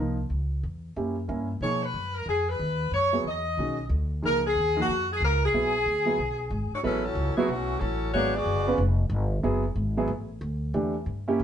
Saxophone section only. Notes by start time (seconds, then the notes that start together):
1.63 C#5
1.84 B4
2.15 A#4
2.29 G#4
2.49 B4
2.94 C#5
3.28 D#5
4.26 A#4
4.47 G#4
4.81 F#4
5.13 G#4
5.25 A#4
5.45 G#4
6.74 A3 D4 F#4 C#5
6.84 G#3 C#4 E4 B4
7.04 F#3 C#4 E4 A4
7.37 E3 A3 C#4 G#4
7.48 E3 A3 C#4 F#4
7.80 F#3 C#4 E4 A4
8.14 A#3 D4 F#4 C#5
8.36 B3 F#4 G#4 D5